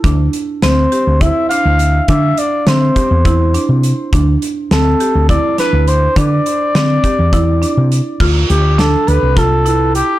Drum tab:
CC |-------|-------|-------|-------|
HH |xxxxxxx|xxxxxxx|xxxxxxx|xxxxxxx|
SD |--o----|--o----|--o--o-|--o----|
BD |o---o--|o--oo--|o---o--|o--oo--|

CC |x------|
HH |-xxxxxx|
SD |--o-o--|
BD |o---o--|